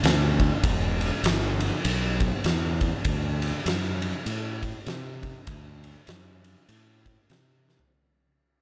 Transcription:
0.03 fingered electric bass D2, snare, ride
0.40 kick, ride
0.63 fingered electric bass E1, kick, ride
1.01 ride
1.23 fingered electric bass G1, snare, ride
1.60 ride
1.85 fingered electric bass B1, ride
2.20 kick, ride
2.44 fingered electric bass E2, snare, ride
2.81 kick, ride
3.05 fingered electric bass D2, kick, ride
3.42 ride
3.66 fingered electric bass F#2, snare, ride
4.02 ride
4.26 fingered electric bass A2, ride
4.63 kick, ride
4.86 fingered electric bass C3, snare, ride
5.23 kick, ride
5.47 fingered electric bass D2, kick, ride
5.84 ride
6.07 fingered electric bass F#2, snare, ride
6.44 ride
6.69 fingered electric bass A2, ride
7.06 kick, ride
7.30 fingered electric bass C3, snare, ride
7.69 snare
7.79 floor tom

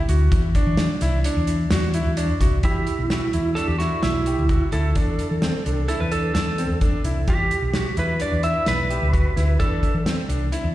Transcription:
0.08 fingered electric bass D2, grand piano F#4, closed hi-hat
0.31 fingered electric bass E2, kick, closed hi-hat
0.55 grand piano D4, kick, closed hi-hat
0.67 fingered electric bass E3
0.77 snare, closed hi-hat
1.01 fingered electric bass C2, grand piano E4, snare, closed hi-hat
1.24 grand piano D4, closed hi-hat
1.37 fingered electric bass E2
1.47 closed hi-hat
1.71 fingered electric bass E2, grand piano F#4, snare, closed hi-hat
1.94 grand piano E4, closed hi-hat
2.06 fingered electric bass E2
2.17 grand piano D4, closed hi-hat
2.40 fingered electric bass C2, grand piano F#4, kick, snare, closed hi-hat
2.63 fingered electric bass E2, lead electric guitar E4, grand piano G4, kick, closed hi-hat
2.87 closed hi-hat
2.99 fingered electric bass B1
3.10 grand piano F#4, snare, closed hi-hat
3.33 fingered electric bass E2, grand piano E4, closed hi-hat
3.55 grand piano D4, lead electric guitar A4, closed hi-hat
3.67 fingered electric bass E2, lead electric guitar G4
3.79 grand piano E4, lead electric guitar F#4, snare, closed hi-hat
4.03 fingered electric bass B1, lead electric guitar E4, snare, closed hi-hat
4.26 grand piano G4, closed hi-hat
4.38 fingered electric bass D2
4.49 grand piano F#4, kick, closed hi-hat
4.72 fingered electric bass D2, grand piano E4, lead electric guitar A4, closed hi-hat
4.95 fingered electric bass E2, grand piano D4, kick, closed hi-hat
5.19 closed hi-hat
5.31 fingered electric bass E3
5.42 grand piano C4, snare, closed hi-hat
5.66 fingered electric bass C2, grand piano D4, closed hi-hat
5.88 grand piano E4, lead electric guitar A4, closed hi-hat
6.00 fingered electric bass E2, lead electric guitar B4
6.12 grand piano D4, lead electric guitar A4, closed hi-hat
6.34 fingered electric bass E2, lead electric guitar A4, snare, closed hi-hat
6.58 grand piano C4, closed hi-hat
6.69 fingered electric bass E2
6.81 grand piano D4, kick, closed hi-hat
7.04 fingered electric bass C2, grand piano E4, closed hi-hat
7.28 fingered electric bass E2, grand piano G4, lead electric guitar G4, kick, closed hi-hat
7.51 closed hi-hat
7.62 fingered electric bass B1
7.74 grand piano F#4, snare, closed hi-hat
7.97 fingered electric bass E2, grand piano E4, lead electric guitar B4, closed hi-hat
8.20 grand piano D4, lead electric guitar D5, closed hi-hat
8.32 fingered electric bass E2
8.43 grand piano E4, lead electric guitar E5, closed hi-hat
8.66 fingered electric bass B1, lead electric guitar B4, snare, closed hi-hat
8.90 grand piano G4, closed hi-hat
9.02 fingered electric bass D2
9.13 grand piano F#4, kick, closed hi-hat
9.36 fingered electric bass D2, grand piano E4, snare, closed hi-hat
9.59 fingered electric bass E2, grand piano D4, lead electric guitar A4, kick, closed hi-hat
9.83 kick, closed hi-hat
9.94 fingered electric bass E3
10.06 grand piano C4, snare, closed hi-hat
10.28 fingered electric bass C2, grand piano D4, closed hi-hat
10.52 grand piano E4, closed hi-hat
10.64 fingered electric bass E2

